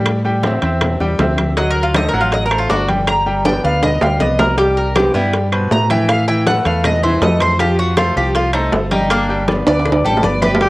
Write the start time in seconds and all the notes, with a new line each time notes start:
Already playing: A2 G3 G4 G5
0.05 high bongo, high conga, high timbale, claves
0.24 G3 G4 G5, high bongo, high conga
0.43 C4 C5 E5, high bongo, high conga, high timbale, low timbale
0.62 E2 C4 C5 E5, high bongo, high conga, high timbale
0.81 high bongo, high conga, low conga, high timbale, claves
1.00 E2 G3 G4 G5, high conga, low conga
1.19 D2 C4 C5 E5, high bongo, low bongo, high conga, high timbale, low timbale
1.38 high bongo, high conga, high timbale, claves
1.57 F#3 F#4 D#5 F#5, high bongo, high conga, high timbale
1.70 A#4
1.76 high bongo, high conga
1.83 F4
1.94 A3 A4 C5 D#5, high bongo, high conga, high timbale, low timbale, claves
2.08 A#4
2.13 A1 F#3 F#4 F#5, high bongo, high conga
2.21 F4
2.32 D#5, high bongo, high conga, high timbale
2.46 A#4
2.51 A3 A4 C5, high bongo, high conga, high timbale, claves
2.58 F4
2.69 G1 D4 F#4, high bongo, low bongo, high conga, low timbale
2.88 G3 G4 G5, high conga, high timbale
3.07 A#5, high bongo, high conga, high timbale, claves
3.26 G3 G4 G5, high bongo, high conga
3.45 B3 B4 D5 G5, high bongo, high conga, high timbale
3.64 D2 B3 B4 D5 F5, high bongo, high conga
3.83 D#5, high bongo, high conga, low conga, high timbale, claves
4.01 D2 G3 G4 F5 G5, high conga, low timbale
4.20 C2 B3 B4 D5 D#5, high bongo, low bongo, high conga
4.39 A#4, high bongo, high conga, low timbale, claves
4.57 G3 G4 G5, high bongo, high conga, high timbale
4.77 A#4, high bongo, high conga
4.96 B3 G4 B4 C5, high bongo, high conga, high timbale, low timbale, claves
5.14 G2 G3 B3 E4 G4 G5, high conga
5.33 high bongo, high conga, high timbale
5.52 B2 B4 C5, high bongo, high conga, high timbale, claves
5.71 A2 A#5, high bongo, low bongo, high conga, low timbale
5.90 E3 E4 E5 G5, high conga, high timbale
6.09 F5, high bongo, high conga, high timbale, claves
6.28 E3 E4 E5 G5, high bongo, high conga
6.47 A3 A4 B4 F#5, high bongo, high conga, high timbale, low timbale
6.65 E2 A3 A4 B4 F5, high bongo, high conga, high timbale
6.84 D#5, high bongo, high conga, low conga, high timbale, claves
7.03 E3 E4 C5 E5, high conga, low conga
7.22 F2 A3 A4 B4 D#5, high bongo, low bongo, high conga, high timbale, low timbale
7.40 C5, high bongo, high conga, high timbale, claves
7.59 F3 F4 G4 F5, high bongo, high conga, high timbale
7.78 F#4, high bongo, high conga
7.97 A3 F4 A4 C5, high bongo, high conga, high timbale, low timbale, claves
8.16 C2 F3 F4 G4 F5, high bongo, high conga
8.35 F4, high bongo, high conga, high timbale
8.53 A3 D#4 A4 C5, high bongo, high conga, high timbale, claves
8.72 G1, high bongo, low bongo, high conga, low timbale
8.91 G3 D#4 G4 G5, high conga, high timbale
9.10 A#3 D4, high bongo, high conga, high timbale, claves
9.29 G3 G4 G5, high bongo, high conga
9.48 B3 B4 D5, high bongo, high conga, high timbale, low timbale
9.66 D2 B3 B4 D5, high bongo, high conga, high timbale
9.79 high timbale
9.85 high bongo, high conga, low conga, claves
9.92 high timbale
10.04 A1 G3 G4 A4 G5, high conga, low conga
10.17 low timbale
10.23 G1 B3 B4 D5, high bongo, low bongo, high conga
10.42 G4 B4, high conga, low timbale, claves
10.55 low timbale
10.61 G3 G4 G5, high bongo, high conga, high timbale